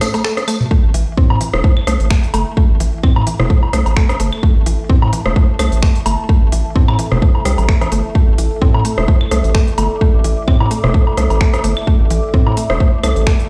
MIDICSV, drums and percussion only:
0, 0, Header, 1, 2, 480
1, 0, Start_track
1, 0, Key_signature, 0, "minor"
1, 0, Tempo, 465116
1, 732, Time_signature, 4, 2, 24, 8
1, 13925, End_track
2, 0, Start_track
2, 0, Title_t, "Drums"
2, 11, Note_on_c, 9, 54, 83
2, 12, Note_on_c, 9, 46, 89
2, 13, Note_on_c, 9, 37, 67
2, 114, Note_off_c, 9, 54, 0
2, 116, Note_off_c, 9, 37, 0
2, 116, Note_off_c, 9, 46, 0
2, 144, Note_on_c, 9, 54, 40
2, 145, Note_on_c, 9, 46, 36
2, 145, Note_on_c, 9, 77, 43
2, 247, Note_off_c, 9, 54, 0
2, 248, Note_off_c, 9, 46, 0
2, 248, Note_off_c, 9, 77, 0
2, 252, Note_on_c, 9, 54, 53
2, 253, Note_on_c, 9, 26, 92
2, 356, Note_off_c, 9, 26, 0
2, 356, Note_off_c, 9, 54, 0
2, 384, Note_on_c, 9, 37, 65
2, 385, Note_on_c, 9, 46, 35
2, 390, Note_on_c, 9, 54, 36
2, 488, Note_off_c, 9, 37, 0
2, 488, Note_off_c, 9, 46, 0
2, 493, Note_off_c, 9, 54, 0
2, 493, Note_on_c, 9, 46, 87
2, 493, Note_on_c, 9, 75, 68
2, 495, Note_on_c, 9, 54, 92
2, 596, Note_off_c, 9, 46, 0
2, 596, Note_off_c, 9, 75, 0
2, 598, Note_off_c, 9, 54, 0
2, 625, Note_on_c, 9, 45, 82
2, 625, Note_on_c, 9, 54, 39
2, 728, Note_off_c, 9, 45, 0
2, 728, Note_off_c, 9, 54, 0
2, 733, Note_on_c, 9, 36, 116
2, 836, Note_off_c, 9, 36, 0
2, 972, Note_on_c, 9, 46, 94
2, 1076, Note_off_c, 9, 46, 0
2, 1212, Note_on_c, 9, 36, 122
2, 1316, Note_off_c, 9, 36, 0
2, 1344, Note_on_c, 9, 77, 79
2, 1448, Note_off_c, 9, 77, 0
2, 1453, Note_on_c, 9, 46, 92
2, 1556, Note_off_c, 9, 46, 0
2, 1584, Note_on_c, 9, 37, 68
2, 1688, Note_off_c, 9, 37, 0
2, 1692, Note_on_c, 9, 36, 124
2, 1796, Note_off_c, 9, 36, 0
2, 1824, Note_on_c, 9, 75, 66
2, 1927, Note_off_c, 9, 75, 0
2, 1932, Note_on_c, 9, 37, 66
2, 1932, Note_on_c, 9, 46, 91
2, 2035, Note_off_c, 9, 37, 0
2, 2036, Note_off_c, 9, 46, 0
2, 2065, Note_on_c, 9, 46, 37
2, 2168, Note_off_c, 9, 46, 0
2, 2172, Note_on_c, 9, 26, 109
2, 2172, Note_on_c, 9, 36, 120
2, 2275, Note_off_c, 9, 36, 0
2, 2276, Note_off_c, 9, 26, 0
2, 2305, Note_on_c, 9, 46, 38
2, 2408, Note_off_c, 9, 46, 0
2, 2412, Note_on_c, 9, 77, 73
2, 2413, Note_on_c, 9, 46, 94
2, 2515, Note_off_c, 9, 77, 0
2, 2516, Note_off_c, 9, 46, 0
2, 2652, Note_on_c, 9, 36, 123
2, 2755, Note_off_c, 9, 36, 0
2, 2893, Note_on_c, 9, 46, 95
2, 2996, Note_off_c, 9, 46, 0
2, 3132, Note_on_c, 9, 36, 124
2, 3133, Note_on_c, 9, 75, 64
2, 3235, Note_off_c, 9, 36, 0
2, 3236, Note_off_c, 9, 75, 0
2, 3264, Note_on_c, 9, 77, 83
2, 3368, Note_off_c, 9, 77, 0
2, 3372, Note_on_c, 9, 46, 101
2, 3475, Note_off_c, 9, 46, 0
2, 3505, Note_on_c, 9, 37, 65
2, 3505, Note_on_c, 9, 45, 94
2, 3608, Note_off_c, 9, 37, 0
2, 3608, Note_off_c, 9, 45, 0
2, 3612, Note_on_c, 9, 36, 124
2, 3715, Note_off_c, 9, 36, 0
2, 3744, Note_on_c, 9, 77, 57
2, 3847, Note_off_c, 9, 77, 0
2, 3852, Note_on_c, 9, 37, 63
2, 3852, Note_on_c, 9, 46, 93
2, 3955, Note_off_c, 9, 37, 0
2, 3956, Note_off_c, 9, 46, 0
2, 3985, Note_on_c, 9, 46, 39
2, 3985, Note_on_c, 9, 77, 52
2, 4088, Note_off_c, 9, 46, 0
2, 4088, Note_off_c, 9, 77, 0
2, 4092, Note_on_c, 9, 26, 112
2, 4092, Note_on_c, 9, 36, 122
2, 4195, Note_off_c, 9, 36, 0
2, 4196, Note_off_c, 9, 26, 0
2, 4224, Note_on_c, 9, 37, 65
2, 4224, Note_on_c, 9, 77, 54
2, 4225, Note_on_c, 9, 46, 39
2, 4328, Note_off_c, 9, 37, 0
2, 4328, Note_off_c, 9, 46, 0
2, 4328, Note_off_c, 9, 77, 0
2, 4333, Note_on_c, 9, 46, 95
2, 4436, Note_off_c, 9, 46, 0
2, 4464, Note_on_c, 9, 75, 65
2, 4567, Note_off_c, 9, 75, 0
2, 4572, Note_on_c, 9, 36, 121
2, 4675, Note_off_c, 9, 36, 0
2, 4812, Note_on_c, 9, 46, 98
2, 4915, Note_off_c, 9, 46, 0
2, 5052, Note_on_c, 9, 36, 127
2, 5155, Note_off_c, 9, 36, 0
2, 5184, Note_on_c, 9, 77, 83
2, 5287, Note_off_c, 9, 77, 0
2, 5292, Note_on_c, 9, 46, 100
2, 5395, Note_off_c, 9, 46, 0
2, 5424, Note_on_c, 9, 37, 65
2, 5527, Note_off_c, 9, 37, 0
2, 5532, Note_on_c, 9, 36, 127
2, 5635, Note_off_c, 9, 36, 0
2, 5772, Note_on_c, 9, 37, 63
2, 5772, Note_on_c, 9, 46, 97
2, 5772, Note_on_c, 9, 75, 66
2, 5875, Note_off_c, 9, 37, 0
2, 5875, Note_off_c, 9, 46, 0
2, 5875, Note_off_c, 9, 75, 0
2, 5904, Note_on_c, 9, 46, 40
2, 6007, Note_off_c, 9, 46, 0
2, 6012, Note_on_c, 9, 26, 109
2, 6012, Note_on_c, 9, 36, 126
2, 6115, Note_off_c, 9, 26, 0
2, 6115, Note_off_c, 9, 36, 0
2, 6144, Note_on_c, 9, 46, 41
2, 6247, Note_off_c, 9, 46, 0
2, 6252, Note_on_c, 9, 46, 97
2, 6252, Note_on_c, 9, 77, 77
2, 6355, Note_off_c, 9, 46, 0
2, 6355, Note_off_c, 9, 77, 0
2, 6492, Note_on_c, 9, 36, 126
2, 6595, Note_off_c, 9, 36, 0
2, 6732, Note_on_c, 9, 46, 98
2, 6835, Note_off_c, 9, 46, 0
2, 6972, Note_on_c, 9, 36, 123
2, 7075, Note_off_c, 9, 36, 0
2, 7104, Note_on_c, 9, 75, 65
2, 7104, Note_on_c, 9, 77, 80
2, 7207, Note_off_c, 9, 75, 0
2, 7207, Note_off_c, 9, 77, 0
2, 7212, Note_on_c, 9, 46, 97
2, 7315, Note_off_c, 9, 46, 0
2, 7344, Note_on_c, 9, 37, 63
2, 7344, Note_on_c, 9, 45, 89
2, 7447, Note_off_c, 9, 37, 0
2, 7447, Note_off_c, 9, 45, 0
2, 7452, Note_on_c, 9, 36, 126
2, 7555, Note_off_c, 9, 36, 0
2, 7584, Note_on_c, 9, 77, 54
2, 7687, Note_off_c, 9, 77, 0
2, 7692, Note_on_c, 9, 46, 95
2, 7693, Note_on_c, 9, 37, 60
2, 7795, Note_off_c, 9, 46, 0
2, 7796, Note_off_c, 9, 37, 0
2, 7824, Note_on_c, 9, 46, 39
2, 7825, Note_on_c, 9, 77, 53
2, 7927, Note_off_c, 9, 46, 0
2, 7928, Note_off_c, 9, 77, 0
2, 7932, Note_on_c, 9, 26, 104
2, 7932, Note_on_c, 9, 36, 122
2, 8035, Note_off_c, 9, 26, 0
2, 8035, Note_off_c, 9, 36, 0
2, 8064, Note_on_c, 9, 46, 40
2, 8065, Note_on_c, 9, 37, 60
2, 8065, Note_on_c, 9, 77, 55
2, 8167, Note_off_c, 9, 46, 0
2, 8168, Note_off_c, 9, 37, 0
2, 8168, Note_off_c, 9, 77, 0
2, 8172, Note_on_c, 9, 46, 93
2, 8275, Note_off_c, 9, 46, 0
2, 8412, Note_on_c, 9, 36, 123
2, 8515, Note_off_c, 9, 36, 0
2, 8652, Note_on_c, 9, 46, 92
2, 8755, Note_off_c, 9, 46, 0
2, 8892, Note_on_c, 9, 36, 119
2, 8995, Note_off_c, 9, 36, 0
2, 9024, Note_on_c, 9, 77, 78
2, 9128, Note_off_c, 9, 77, 0
2, 9132, Note_on_c, 9, 46, 95
2, 9235, Note_off_c, 9, 46, 0
2, 9265, Note_on_c, 9, 37, 62
2, 9368, Note_off_c, 9, 37, 0
2, 9372, Note_on_c, 9, 36, 121
2, 9475, Note_off_c, 9, 36, 0
2, 9504, Note_on_c, 9, 75, 69
2, 9608, Note_off_c, 9, 75, 0
2, 9612, Note_on_c, 9, 37, 60
2, 9612, Note_on_c, 9, 46, 92
2, 9715, Note_off_c, 9, 46, 0
2, 9716, Note_off_c, 9, 37, 0
2, 9744, Note_on_c, 9, 46, 37
2, 9847, Note_off_c, 9, 46, 0
2, 9852, Note_on_c, 9, 26, 100
2, 9852, Note_on_c, 9, 36, 117
2, 9955, Note_off_c, 9, 26, 0
2, 9955, Note_off_c, 9, 36, 0
2, 9984, Note_on_c, 9, 46, 38
2, 10087, Note_off_c, 9, 46, 0
2, 10092, Note_on_c, 9, 46, 92
2, 10093, Note_on_c, 9, 77, 73
2, 10195, Note_off_c, 9, 46, 0
2, 10196, Note_off_c, 9, 77, 0
2, 10332, Note_on_c, 9, 36, 116
2, 10435, Note_off_c, 9, 36, 0
2, 10572, Note_on_c, 9, 46, 91
2, 10675, Note_off_c, 9, 46, 0
2, 10812, Note_on_c, 9, 36, 118
2, 10812, Note_on_c, 9, 75, 69
2, 10915, Note_off_c, 9, 36, 0
2, 10915, Note_off_c, 9, 75, 0
2, 10944, Note_on_c, 9, 77, 80
2, 11047, Note_off_c, 9, 77, 0
2, 11052, Note_on_c, 9, 46, 91
2, 11155, Note_off_c, 9, 46, 0
2, 11185, Note_on_c, 9, 37, 65
2, 11185, Note_on_c, 9, 45, 86
2, 11288, Note_off_c, 9, 37, 0
2, 11288, Note_off_c, 9, 45, 0
2, 11292, Note_on_c, 9, 36, 115
2, 11395, Note_off_c, 9, 36, 0
2, 11425, Note_on_c, 9, 77, 53
2, 11528, Note_off_c, 9, 77, 0
2, 11532, Note_on_c, 9, 46, 89
2, 11533, Note_on_c, 9, 37, 63
2, 11635, Note_off_c, 9, 46, 0
2, 11636, Note_off_c, 9, 37, 0
2, 11664, Note_on_c, 9, 46, 37
2, 11665, Note_on_c, 9, 77, 51
2, 11768, Note_off_c, 9, 46, 0
2, 11768, Note_off_c, 9, 77, 0
2, 11772, Note_on_c, 9, 26, 102
2, 11772, Note_on_c, 9, 36, 118
2, 11875, Note_off_c, 9, 36, 0
2, 11876, Note_off_c, 9, 26, 0
2, 11904, Note_on_c, 9, 46, 38
2, 11905, Note_on_c, 9, 37, 64
2, 11905, Note_on_c, 9, 77, 52
2, 12008, Note_off_c, 9, 37, 0
2, 12008, Note_off_c, 9, 46, 0
2, 12008, Note_off_c, 9, 77, 0
2, 12012, Note_on_c, 9, 46, 89
2, 12115, Note_off_c, 9, 46, 0
2, 12145, Note_on_c, 9, 75, 70
2, 12248, Note_off_c, 9, 75, 0
2, 12252, Note_on_c, 9, 36, 114
2, 12355, Note_off_c, 9, 36, 0
2, 12492, Note_on_c, 9, 46, 88
2, 12595, Note_off_c, 9, 46, 0
2, 12732, Note_on_c, 9, 36, 118
2, 12835, Note_off_c, 9, 36, 0
2, 12865, Note_on_c, 9, 77, 74
2, 12968, Note_off_c, 9, 77, 0
2, 12972, Note_on_c, 9, 46, 89
2, 13075, Note_off_c, 9, 46, 0
2, 13105, Note_on_c, 9, 37, 69
2, 13208, Note_off_c, 9, 37, 0
2, 13212, Note_on_c, 9, 36, 111
2, 13315, Note_off_c, 9, 36, 0
2, 13452, Note_on_c, 9, 37, 63
2, 13452, Note_on_c, 9, 46, 90
2, 13452, Note_on_c, 9, 75, 72
2, 13555, Note_off_c, 9, 37, 0
2, 13555, Note_off_c, 9, 46, 0
2, 13555, Note_off_c, 9, 75, 0
2, 13584, Note_on_c, 9, 46, 36
2, 13687, Note_off_c, 9, 46, 0
2, 13692, Note_on_c, 9, 26, 103
2, 13692, Note_on_c, 9, 36, 113
2, 13795, Note_off_c, 9, 26, 0
2, 13795, Note_off_c, 9, 36, 0
2, 13825, Note_on_c, 9, 46, 36
2, 13925, Note_off_c, 9, 46, 0
2, 13925, End_track
0, 0, End_of_file